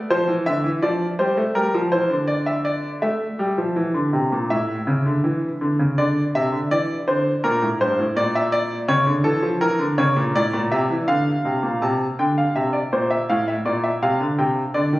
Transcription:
0.10 F3 C5
0.28 E3
0.46 D3 E5
0.64 E3
0.82 F3 D5
1.19 G3 C5
1.37 A3
1.55 G3 A#4
1.74 F3
1.92 E3 C5
2.10 D3
2.27 D5
2.46 E5
2.65 D5
3.02 A3 E5
3.39 G3
3.58 F3
3.76 E3
3.94 D3
4.13 C3
4.32 A#2
4.50 A2 E5
4.87 C#3
5.06 D3
5.24 E3
5.61 D3
5.79 C#3
5.98 D3 D5
6.35 C3 E5
6.52 D3
6.71 E3 D5
7.08 D3 C5
7.44 A#2 A#4
7.62 A2
7.81 G2 C5
7.99 A2
8.16 A#2 D5
8.35 E5
8.52 D5
8.88 C#3 C#5
9.06 D3
9.24 E3 A4
9.42 F3
9.61 E3 A#4
9.79 D3
9.98 C#3 C#5
10.16 A#2
10.36 A2 D5
10.53 A#2
10.71 C3 E5
10.90 E3
11.08 D3 F5
11.45 C3
11.63 A#2
11.82 C3 A5
12.19 D3 G5
12.38 F5
12.56 C3 E5
12.73 D5
12.93 A#2 C5
13.11 E5
13.30 A2 F5
13.48 E5
13.65 A#2 D5
13.84 E5
14.02 C3 F5
14.20 D3
14.38 C3 G5
14.74 D3 D5
14.93 D#3

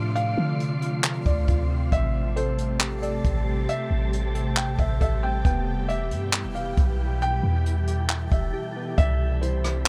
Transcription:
Already playing: A2 C3 F3 A3 D4 F4 D5 E5 C6
0.15 C4 F5, closed hi-hat
0.38 D3
0.60 closed hi-hat
0.82 F4, closed hi-hat
1.04 clap, closed hi-hat
1.26 D2 D5, kick, closed hi-hat
1.48 D2 F4, kick, closed hi-hat
1.70 C4
1.92 A1 G3 A3 C4 G4 C5 E5 A5, kick, closed hi-hat
2.36 A4 C5, closed hi-hat
2.58 closed hi-hat
2.80 G4, clap, closed hi-hat
3.02 A4 D5, closed hi-hat
3.24 A1, kick, closed hi-hat
3.69 E5, closed hi-hat
3.91 A1
4.13 closed hi-hat
4.35 A4, closed hi-hat
4.57 G5, clap, closed hi-hat
4.79 A1 E5, kick, closed hi-hat
5.01 A1 A4 E5, kick, closed hi-hat
5.23 C4 G5
5.45 E1 B2 E3 B3 B4 G5, kick, closed hi-hat
5.89 G4 E5, closed hi-hat
6.11 G2, closed hi-hat
6.33 E3, clap, closed hi-hat
6.44 E1
6.55 G4 F5, closed hi-hat
6.77 B1, kick, closed hi-hat
7.21 A4 G5, closed hi-hat
7.43 E2
7.66 closed hi-hat
7.87 G4, closed hi-hat
8.10 clap, closed hi-hat
8.32 E1 E5, kick, closed hi-hat
8.54 G4
8.76 B3
8.98 C2 C3 G3 C4 E4 G4 C5 E5 B5, kick, closed hi-hat
9.41 E4 C5, closed hi-hat
9.64 cross-stick, closed hi-hat

